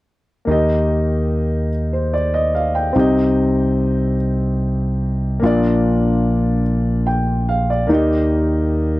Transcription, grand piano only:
0.45 1.67 D#3 soft
0.45 2.89 A#3 soft
0.45 2.91 D#4 soft
0.49 2.92 G4 soft
0.49 1.71 D#5 medium
1.93 2.12 C5 soft
2.14 2.33 D5 soft
2.34 2.53 D#5 medium
2.55 2.74 F5 soft
2.75 3.14 G5 soft
2.93 4.15 C3 soft
2.93 5.37 C4 soft
2.93 5.38 D#4 soft
2.97 5.39 G4 soft
2.97 5.40 D#5 medium
5.39 6.62 A#2 soft
5.39 7.84 A#3 soft
5.39 7.85 D4 soft
5.44 7.86 F4 soft
5.44 7.06 D5 medium
7.07 7.46 G5 soft
7.49 7.68 F5 soft
7.70 8.09 D5 soft
7.87 9.00 D#3 soft
7.87 9.00 A#3 soft
7.87 9.00 D#4 soft
7.91 9.00 G4 soft
7.91 9.00 D#5 medium

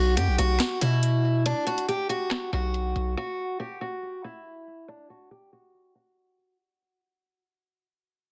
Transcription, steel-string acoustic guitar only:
0.00 0.14 F#4 loud
0.17 0.35 G4 medium
0.38 0.79 F#4 medium
0.82 1.42 E4 medium
1.46 1.64 D4 medium
1.67 1.85 F#4 medium
1.89 2.07 G4 medium
2.09 2.50 F#4 medium
2.53 3.13 F#4 medium
3.17 3.58 F#4 loud
3.60 3.78 G4 medium
3.81 4.22 F#4 medium
4.24 4.85 E4 medium
4.88 5.07 D4 loud
5.10 5.28 F#4 medium
5.31 5.49 G4 medium
5.53 5.93 F#4 medium
5.95 6.56 F#4 medium

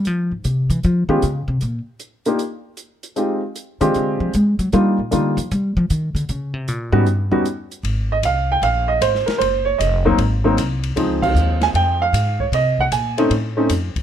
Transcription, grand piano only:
1.09 1.21 G#3 medium
1.09 1.21 B3 medium
1.09 1.21 C#4 medium
1.09 1.21 F4 medium
1.09 1.21 G4 medium
2.26 2.38 A#3 medium
2.26 2.38 D4 medium
2.26 2.38 D#4 medium
2.26 2.38 F4 medium
2.26 2.38 G4 medium
3.16 3.40 G#3 medium
3.16 3.40 C4 medium
3.16 3.40 D#4 medium
3.16 3.40 F4 medium
3.16 3.40 G4 medium
3.81 4.31 G#3 medium
3.81 4.31 C4 medium
3.81 4.31 D4 medium
3.81 4.31 F4 medium
3.81 4.31 G4 medium
4.73 4.96 G3 medium
4.73 4.96 A#3 medium
4.73 4.96 D4 medium
4.73 4.96 D#4 medium
4.73 4.96 F4 medium
5.11 5.34 G3 medium
5.11 5.35 A#3 medium
5.11 5.35 D4 medium
5.11 5.35 D#4 medium
5.11 5.35 F4 medium
6.92 7.05 G3 medium
6.92 7.05 B3 medium
6.92 7.05 C#4 medium
6.92 7.05 D#4 medium
6.92 7.05 F#4 medium
7.31 7.44 G3 medium
7.31 7.44 B3 medium
7.31 7.44 C#4 medium
7.31 7.44 D#4 medium
7.31 7.44 F#4 medium
8.12 8.17 D#5 medium
8.25 8.51 F5 loud
8.52 8.64 G5 medium
8.63 8.89 F5 loud
8.88 9.02 D#5 medium
9.02 9.26 C5 medium
9.26 9.40 A#4 medium
9.38 9.63 C5 medium
9.65 9.78 C#5 medium
9.78 10.15 D#5 medium
10.05 10.17 F#3 medium
10.05 10.17 A#3 medium
10.05 10.18 C4 medium
10.05 10.18 D#4 medium
10.44 10.56 F#3 medium
10.44 10.57 A#3 medium
10.44 10.56 C4 medium
10.44 10.57 D#4 medium
10.96 12.06 F3 medium
10.96 12.06 G#3 medium
10.96 12.06 C4 medium
10.96 12.06 D#4 medium
11.22 11.63 F5 loud
11.63 11.68 G#5 loud
11.76 11.99 G5 medium
12.02 12.38 F5 loud
12.40 12.45 C#5 medium
12.54 12.80 D#5 medium
12.80 12.85 F#5 medium
12.92 13.29 G#5 medium
13.18 13.30 A3 medium
13.18 13.30 C4 medium
13.18 13.30 C#4 medium
13.18 13.30 D#4 medium
13.57 13.69 A3 medium
13.57 13.69 C4 medium
13.57 13.69 C#4 medium
13.57 13.69 D#4 medium

